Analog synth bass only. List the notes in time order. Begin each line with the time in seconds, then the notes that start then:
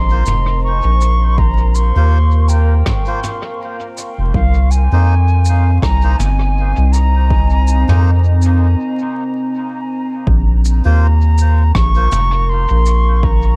Already playing: A#1
0.27 F1
0.85 A#1
1.96 D#2
4.18 F1
4.34 C2
4.92 F2
5.82 C2
6.19 G1
6.78 C2
7.89 F2
10.27 A#1
10.86 D#2
11.75 A#1
12.12 F1
12.70 A#1